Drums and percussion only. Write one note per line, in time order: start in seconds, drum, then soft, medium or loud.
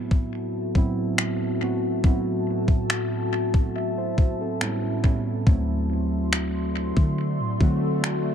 0.11 kick medium
0.75 kick medium
1.18 finger snap loud
2.04 kick loud
2.68 kick medium
2.90 finger snap loud
3.54 kick medium
4.18 kick medium
4.61 finger snap loud
5.04 kick medium
5.47 kick loud
6.33 finger snap loud
6.97 kick medium
7.61 kick medium
8.04 finger snap loud